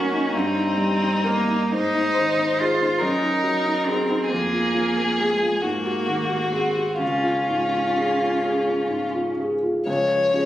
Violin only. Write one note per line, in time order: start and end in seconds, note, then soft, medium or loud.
0.00 0.35 F#4 medium
0.33 1.74 D#4 medium
1.72 3.00 C5 medium
2.99 4.27 A#4 medium
4.28 5.63 G#4 medium
5.62 6.99 F#4 soft
6.99 9.10 F4 soft
9.87 10.45 C#5 medium